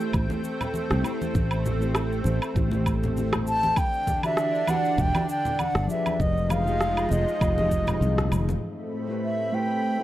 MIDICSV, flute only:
0, 0, Header, 1, 2, 480
1, 0, Start_track
1, 0, Key_signature, 0, "minor"
1, 0, Tempo, 606061
1, 1069, Time_signature, 4, 2, 24, 8
1, 7947, End_track
2, 0, Start_track
2, 0, Title_t, "Flute"
2, 0, Program_c, 0, 73
2, 2758, Note_on_c, 0, 81, 107
2, 2992, Note_on_c, 0, 79, 112
2, 3004, Note_off_c, 0, 81, 0
2, 3362, Note_off_c, 0, 79, 0
2, 3367, Note_on_c, 0, 76, 94
2, 3720, Note_on_c, 0, 78, 93
2, 3732, Note_off_c, 0, 76, 0
2, 3969, Note_on_c, 0, 79, 102
2, 3981, Note_off_c, 0, 78, 0
2, 4199, Note_off_c, 0, 79, 0
2, 4202, Note_on_c, 0, 79, 88
2, 4436, Note_on_c, 0, 78, 100
2, 4448, Note_off_c, 0, 79, 0
2, 4672, Note_off_c, 0, 78, 0
2, 4676, Note_on_c, 0, 76, 94
2, 4917, Note_on_c, 0, 75, 89
2, 4929, Note_off_c, 0, 76, 0
2, 5156, Note_on_c, 0, 77, 97
2, 5168, Note_off_c, 0, 75, 0
2, 5632, Note_on_c, 0, 75, 83
2, 5644, Note_off_c, 0, 77, 0
2, 6590, Note_off_c, 0, 75, 0
2, 7322, Note_on_c, 0, 76, 80
2, 7559, Note_on_c, 0, 79, 97
2, 7570, Note_off_c, 0, 76, 0
2, 7947, Note_off_c, 0, 79, 0
2, 7947, End_track
0, 0, End_of_file